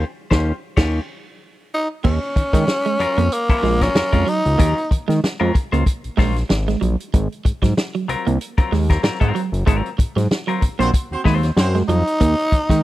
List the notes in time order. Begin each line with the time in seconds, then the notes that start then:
0.31 D#2 C#4 F4 G4 C5, kick, snare
0.77 D#2 C#4 F4 G4 C#5, kick, snare, crash
1.74 D#4
2.04 D#2 A#3 C#4, kick, crash
2.23 closed hi-hat
2.36 D#3, muted clean electric guitar stroke, kick, closed hi-hat
2.53 D#3 G#3, kick, snare, closed hi-hat
2.68 snare
2.86 G#3, closed hi-hat
2.99 F2 F#3 C#4 F4 A#4, muted clean electric guitar stroke, closed hi-hat
3.18 F2 A#3, closed hi-hat
3.32 A#3, closed hi-hat
3.49 A#1 F#3 C#4 F4 A#4, kick, closed hi-hat
3.63 A#1 G#3, snare, open hi-hat
3.81 F#3 C#4 F4 A#4, kick, snare, closed hi-hat
3.95 F2 F#3 C#4 F4 A#4, muted clean electric guitar stroke, snare
4.12 F2 F#3 G#3 C#4 F4 A#4, kick, closed hi-hat
4.27 F#3 D#4, closed hi-hat
4.46 C#2, closed hi-hat
4.58 D#2 F#3 A#3 C#4 F4 A#4, kick, closed hi-hat
4.78 closed hi-hat
4.91 D#3, muted clean electric guitar stroke, kick, closed hi-hat
5.08 D#3 G#3, snare, closed hi-hat
5.24 snare
5.40 F2 F#3 G#3 C#4 F4 A#4
5.55 muted clean electric guitar stroke, kick, closed hi-hat
5.72 C#2 F#3 A#3 C#4 F4 C5, closed hi-hat
5.86 kick, closed hi-hat
6.04 A#1, closed hi-hat
6.17 A#1 F#3 G#3 C#4 F4 C5, kick, snare, open hi-hat
6.36 snare, closed hi-hat
6.49 G#1, muted clean electric guitar stroke, snare
6.68 G#3, snare, closed hi-hat
6.81 A#1 F#3, closed hi-hat
7.00 closed hi-hat
7.14 G#1 G#3, kick, closed hi-hat
7.32 closed hi-hat
7.45 G#2, muted clean electric guitar stroke, kick, closed hi-hat
7.62 G#2 F#3, kick, snare, closed hi-hat
7.77 snare
7.95 F#3, closed hi-hat
8.08 C2 F#3 C4 F4 A#4, muted clean electric guitar stroke, closed hi-hat
8.27 C2 A#3, closed hi-hat
8.41 closed hi-hat
8.58 D#2 F#3 C4 F4 A#4, kick, closed hi-hat
8.72 D#2 G#3, snare, open hi-hat
8.90 F#3 C4 F4 A#4, kick, snare, closed hi-hat
9.03 G#2 F#3 C4 F4 A#4, muted clean electric guitar stroke, snare
9.20 G#2 F#3 G#3 C4 F4 A#4, kick, closed hi-hat
9.35 F#3, closed hi-hat
9.52 F#1, closed hi-hat
9.66 G#1 F#3 G#3 C4 F4 A#4, kick, closed hi-hat
9.86 closed hi-hat
9.98 G#2, muted clean electric guitar stroke, kick, closed hi-hat
10.16 G#2 F#3, snare, closed hi-hat
10.31 snare
10.47 F#3 C4 F4 A#4, closed hi-hat
10.61 A#1, muted clean electric guitar stroke, kick, closed hi-hat
10.79 A#1 F#3 A#3 C4 F4 F#4 C5, closed hi-hat
10.94 kick, closed hi-hat
11.11 D#2 C4 F#4 C5
11.24 D#2 F#3 G#3 C4 F4 C5, kick, snare, open hi-hat
11.43 snare, closed hi-hat
11.57 F#2 C4 F#4 C5, muted clean electric guitar stroke, snare
11.75 G#3, snare, closed hi-hat
11.88 F2 F#3 D#4, closed hi-hat
12.07 closed hi-hat
12.21 D#2 A#3, kick, closed hi-hat
12.39 closed hi-hat
12.52 D#3, muted clean electric guitar stroke, kick, closed hi-hat
12.70 D#3 G#3, kick, snare, closed hi-hat